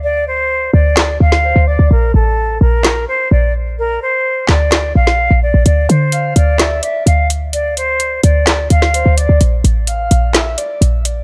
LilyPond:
<<
  \new Staff \with { instrumentName = "Flute" } { \time 4/4 \key d \minor \tempo 4 = 128 d''8 c''4 d''4 f''4 d''8 | bes'8 a'4 bes'4 c''8 d''8 r8 | bes'8 c''4 d''4 f''4 d''8 | d''8 c''4 d''4 e''8 f''8 r8 |
d''8 c''4 d''4 f''4 d''8 | r1 | }
  \new Staff \with { instrumentName = "Soft synth lead" } { \time 4/4 \key d \minor r2. c''8 d''8 | r1 | r1 | r4 f''4 e''8 d''8 r4 |
r2. c''8 d''8 | r4 f''4 e''8 d''8 r4 | }
  \new Staff \with { instrumentName = "808-style bass" } { \clef bass \time 4/4 \key d \minor d,4. d,4 d,8. d,8 d,16 | bes,,8 a,,4 bes,,4 r8 bes,,4~ | bes,,8 r4 d,4 bes,,8. bes,,8 bes,,16 | d,8 d4 d,4 r8 d,4~ |
d,4. d,4 d,8. d,8 d,16 | bes,,8 a,,4 bes,,4 r8 bes,,4 | }
  \new DrumStaff \with { instrumentName = "Drums" } \drummode { \time 4/4 r4 r4 <hc sn>8. sn16 r4 | r4 r4 <hc sn>4 r4 | r4 r8 <hc sn>8 <hc sn>8. sn16 r4 | hh8 hh8 hh8 hh8 <hc hh sn>8 hh8 hh8 hh8 |
hh8 hh8 hh8 hh8 <hc hh sn>8 hh16 sn16 hh8 hh8 | hh8 hh8 hh8 hh8 <hc hh sn>8 hh8 hh8 hh8 | }
>>